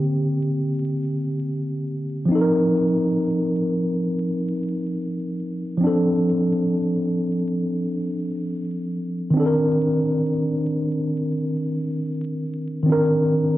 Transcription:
Already playing: D3 A#3 C4 G4
2.25 F3 C4
2.32 D#4 A4
2.41 A#4
5.77 F3 C4
5.84 D4 A4
9.30 D#3 C4
9.37 D4 A4
9.46 A#4
12.83 D#3 C4
12.89 D4 A#4

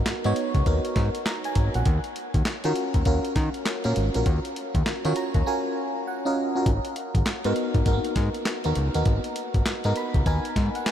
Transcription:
Already playing: B3 D#4 F#4 A#4
0.06 G#2, snare, clap, closed hi-hat
0.24 G#2 B3 D#4 F#4 C#5, closed hi-hat
0.36 closed hi-hat
0.55 C#2, kick, closed hi-hat
0.66 D#2 B3 D#4 F#4 A#4, kick, closed hi-hat
0.85 closed hi-hat
0.96 G#2, kick, snare, closed hi-hat
1.15 closed hi-hat
1.26 A#5, snare, clap, closed hi-hat
1.44 G#5, closed hi-hat
1.55 G#1, kick, closed hi-hat
1.74 A#1 F#5, closed hi-hat
1.85 D#2, kick, closed hi-hat
2.04 closed hi-hat
2.16 closed hi-hat
2.34 D#2, kick, closed hi-hat
2.45 D#3, snare, clap, closed hi-hat
2.64 D#3 C#4 F4 F#4 A#4, closed hi-hat
2.76 closed hi-hat
2.94 D#2, kick, closed hi-hat
3.05 D#2 C#4 F4 F#4 A#4, kick, closed hi-hat
3.25 closed hi-hat
3.36 D#3, kick, snare, closed hi-hat
3.54 closed hi-hat
3.66 snare, clap, closed hi-hat
3.84 A#2 C#4 F4 F#4 A#4, closed hi-hat
3.96 G#1, closed hi-hat
4.14 A#1 C#4 F4 F#4 A#4, closed hi-hat
4.26 D#2, kick, closed hi-hat
4.45 closed hi-hat
4.56 closed hi-hat
4.75 D#2, kick, closed hi-hat
4.86 D#3, snare, clap, closed hi-hat
5.05 D#3 C#4 F4 F#4 C#5, closed hi-hat
5.16 A#5, closed hi-hat
5.34 D#2, kick, closed hi-hat
5.46 C#4 F4 F#4 A#4 G#5
6.07 F#5
6.25 C#4 F4 F#4 A#4 D#5
6.55 C#4 F4 F#4 A#4
6.66 G#1, kick, closed hi-hat
6.85 closed hi-hat
6.96 closed hi-hat
7.15 G#1, kick, closed hi-hat
7.26 G#2, snare, clap, closed hi-hat
7.44 G#2 B3 D#4 F#4 A#4, closed hi-hat
7.56 closed hi-hat
7.74 G#1, kick, closed hi-hat
7.86 G#1 A#3 D#4 F#4 A#4, kick, closed hi-hat
7.93 B3
8.05 closed hi-hat
8.16 G#2, kick, snare, closed hi-hat
8.34 closed hi-hat
8.45 snare, clap, closed hi-hat
8.64 D#2 B3 D#4 F#4 A#4, closed hi-hat
8.75 C#2, closed hi-hat
8.94 D#2 B3 D#4 F#4 A#4, closed hi-hat
9.05 G#1, kick, closed hi-hat
9.24 closed hi-hat
9.36 closed hi-hat
9.54 G#1, kick, closed hi-hat
9.66 G#2, snare, clap, closed hi-hat
9.84 G#2 B3 D#4 F#4 A#4, closed hi-hat
9.96 B5, closed hi-hat
10.14 C#2, kick, closed hi-hat
10.26 D#2 B3 D#4 F#4 A#4 G#5, kick, closed hi-hat
10.45 closed hi-hat
10.56 G#2, kick, snare, closed hi-hat
10.75 F#5, closed hi-hat
10.86 G#5, snare, clap, closed hi-hat

